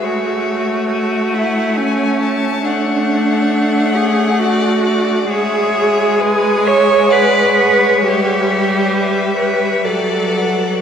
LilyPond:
<<
  \new Staff \with { instrumentName = "Violin" } { \time 3/4 \key e \mixolydian \tempo 4 = 67 e''4 e''8 fis''8 gis''8 a''8 | fis''2. | e''4 gis''4 fis''4 | e''2 d''8 fis''8 | }
  \new Staff \with { instrumentName = "Violin" } { \time 3/4 \key e \mixolydian cis''4 cis''2~ | cis''2 d''8 d''8 | cis''4 b'8 e''8 d''8 cis''8~ | cis''4 b'8 cis''8 d''4 | }
  \new Staff \with { instrumentName = "Cello" } { \time 3/4 \key e \mixolydian fis'4. e'8 cis'4 | d'4. gis'8 fis'4 | gis'4. cis''8 b'4 | g'4. b'8 a'4 | }
  \new Staff \with { instrumentName = "Viola" } { \clef bass \time 3/4 \key e \mixolydian a2. | a2. | gis2. | g2 fis4 | }
>>